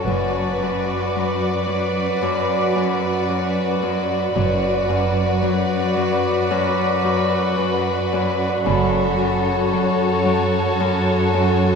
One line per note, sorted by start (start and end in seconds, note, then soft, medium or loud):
0.00 1.14 F#3 soft
0.07 1.11 F#1 soft
0.07 4.33 F#2 soft
0.07 0.61 F#2 soft
0.07 4.33 F#4 soft
0.07 4.34 F#4 soft
0.07 4.33 B4 soft
0.07 4.36 D5 soft
0.07 4.33 D5 soft
0.07 4.36 B5 soft
0.62 2.21 F#2 soft
1.16 1.67 F#3 soft
1.69 5.41 F#3 soft
2.22 2.75 F#2 soft
2.22 5.40 D6 soft
2.76 3.28 F#2 soft
3.29 3.81 F#2 soft
3.82 4.34 F#2 soft
4.36 5.40 F#1 soft
4.36 4.88 F#2 soft
4.36 8.62 F#2 soft
4.36 8.61 F#4 soft
4.36 8.61 B4 soft
4.36 8.61 D5 soft
4.36 8.62 D5 soft
4.36 8.62 B5 soft
4.89 6.50 F#2 soft
5.42 5.96 F#3 soft
5.97 9.72 F#3 soft
6.51 7.04 F#2 medium
7.05 7.57 F#2 soft
7.58 8.12 F#2 soft
8.13 8.65 F#2 soft
8.64 9.69 F#1 soft
8.64 11.75 F#2 medium
8.64 9.18 F#2 medium
8.64 11.75 F#4 soft
8.64 11.75 A4 soft
8.64 11.75 C#5 soft
8.64 11.75 A5 soft
8.64 11.75 B5 soft
9.19 10.79 F#2 soft
9.73 10.24 F#3 soft
10.25 11.75 F#3 soft
10.80 11.33 F#2 medium
11.34 11.75 F#2 soft